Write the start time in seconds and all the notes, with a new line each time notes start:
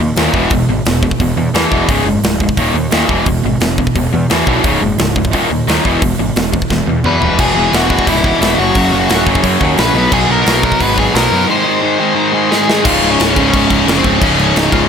0.00 D#2 A#2
0.16 D#2 A#2 D#3, snare, open hi-hat
0.33 E1 E2 B2 E3, kick
0.50 E1 E2 B2, kick, open hi-hat
0.68 G#1 E2 B2
0.85 E1 E2 B2, snare, open hi-hat
1.03 E2 B2, kick
1.11 kick
1.20 E1 E2 B2, kick, open hi-hat
1.36 E2 B2
1.54 E2 B2 E3, snare, open hi-hat
1.71 E1 E2 B2 E3, kick
1.88 C#1 C#2 G#2 C#3, kick, open hi-hat
2.05 F#1 C#2 G#2
2.23 D1 C#2 G#2, snare, open hi-hat
2.40 C#2 G#2, kick
2.49 kick
2.57 D#1 D#2 A#2 D#3, kick, open hi-hat
2.74 D#2 A#2
2.91 D#2 A#2 D#3, snare, open hi-hat
3.08 E1 E2 B2 E3, kick
3.26 E1 E2 B2, kick, open hi-hat
3.44 G#1 E2 B2
3.60 E1 E2 B2, snare, open hi-hat
3.78 E2 B2, kick
3.87 kick
3.95 E1 E2 B2, kick, open hi-hat
4.12 E2 B2
4.30 E2 B2 E3, snare, open hi-hat
4.47 B1 E2 B2 E3, kick
4.64 C#1 C#2 G#2 C#3, kick, open hi-hat
4.82 F#1 C#2 G#2
4.99 C#1 C#2 G#2, snare, open hi-hat
5.16 C#2 G#2, kick
5.25 kick
5.33 D#1 D#2 A#2 D#3, kick, open hi-hat
5.50 D#2 A#2
5.67 D#2 A#2 D#3, snare, open hi-hat
5.84 E1 E2 B2 E3, kick
6.02 E1 E2 B2, kick, open hi-hat
6.19 G#1 E2 B2
6.36 E1 E2 B2, snare, open hi-hat
6.52 E2 B2, kick
6.62 kick
6.70 E1 E2 B2, kick, snare
6.87 E2 B2
7.04 E2 B2 B4 B5, mid tom
7.08 E3
7.21 E1 E2 B2, floor tom
7.25 E3
7.39 E1 E2 B2 E3 G#4 G#5, kick, crash
7.55 E1 E2 B2 E3
7.72 E1 E2 B2 E3 F#4 F#5, snare, open hi-hat
7.90 E2 B2 E3, kick
7.99 kick
8.07 C#1 E2 B2 E3 E4 E5, kick, open hi-hat
8.24 E2 B2 E3, kick
8.41 E1 E2 B2 E3 E4 E5, snare, open hi-hat
8.58 F#1 F#2 C#3 F#3 F#4 F#5
8.75 F#1 F#2 C#3 F#3, kick, open hi-hat
8.92 F#1 F#2 C#3 F#3
9.09 D#1 F#2 C#3 F#3, snare, open hi-hat
9.26 F#1 F#2 C#3 F#3, kick
9.35 kick
9.43 F#2 C#3 F#3, kick, open hi-hat
9.61 D#2 F#2 C#3 F#3, kick
9.78 A#1 F#2 C#3 F#3 B4 B5, snare, open hi-hat
9.94 B1 B2 F#3
9.98 B3
10.12 B1 B2 F#3 B3 G#4 G#5, kick, crash
10.29 B1 B2 F#3 B3 A#4 A#5
10.46 B1 B2 F#3 B3, snare, open hi-hat
10.63 B2 F#3 B3 A#4 A#5, kick
10.72 kick
10.80 G#1 B2 F#3 B3 B4 B5, kick, open hi-hat
10.98 B2 F#3 B3 G#4 G#5, kick
11.14 B1 B2 F#3 B3 A#4 A#5, snare, open hi-hat
11.31 F#2 B2 F#3 B3
11.49 G#2 D#3 G#3 C5 C6
11.64 G#2 D#3 G#3
11.82 G#2 D#3 G#3
11.99 G#2 D#3 G#3
12.17 G#2 D#3 G#3
12.32 G#2 D#3 G#3
12.50 G#2 D#3 G#3 G#4 G#5, snare
12.68 G#2 D#3 G#3, snare
12.84 C#1 C#2 G#2 C#3 F4 F5, kick, crash
13.02 C#1, crash
13.11 C#4 C#5
13.20 C#1, snare, crash
13.36 C#1 C#2 G#2 C#3 C#4 C#5, kick, crash
13.54 C#1, kick, crash
13.70 C#1, kick, crash
13.87 F1 C#2 G#2 C#3 A#3 A#4, snare, crash
13.97 C4 C5
14.04 C#1 C#2 G#2 C#3, kick, crash
14.21 C#1 C#2 G#2 C#3 C#4 C#5, kick, crash
14.38 C#1, crash
14.54 C#1 D#4 D#5, snare, crash
14.72 C#1 C#2 G#2 C#3 F4 F5, kick, crash